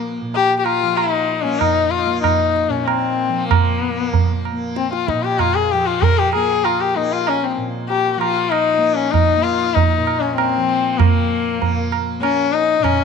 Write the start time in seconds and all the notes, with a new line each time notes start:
Already playing: A#2 F3 A#3
0.21 A#2
0.34 G4, tabla tin
0.59 G4
0.65 F4, tabla na
0.83 F3
0.96 D#4, tabla na
1.43 A#3 C#4
1.59 D#4, tabla na, tabla ge
1.90 F4
2.06 A#3
2.22 D#4, tabla na, tabla ge
2.56 tabla te
2.68 A#2 C#4
2.86 C4, tabla na
3.29 F3
3.48 A#3, tabla na, tabla ge
3.89 A#3
4.14 tabla tin, tabla ge
4.45 tabla na
4.52 A#3
4.76 C4, tabla te
4.92 F4, tabla te
5.08 D#4, tabla ke
5.13 A#2
5.23 G4, tabla te
5.39 F4, tabla na, tabla ge
5.55 G#4
5.71 F3 G4
5.86 F4
6.02 A#4, tabla tin, tabla ge
6.18 G4
6.33 A#3 G#4, tabla na
6.65 F4, tabla na
6.81 G4
6.95 A#3 D#4
7.12 F4
7.27 C#4, tabla na
7.43 C4
7.57 A#2
7.89 G4, tabla tin
8.13 F3 G4
8.19 F4, tabla na
8.50 D#4, tabla na
8.78 A#3
8.96 C#4
9.11 D#4, tabla na, tabla ge
9.37 A#3
9.43 F4
9.74 D#4, tabla tin, tabla ge
9.98 A#2
10.07 tabla na
10.20 C#4
10.36 C4, tabla na
10.57 F3
10.98 F3 A#3, tabla na, tabla ge
11.59 A#3, tabla tin, tabla ge
11.92 tabla na
12.19 A#3 C#4, tabla na
12.53 D#4
12.79 A#2
12.84 C#4, tabla na, tabla ge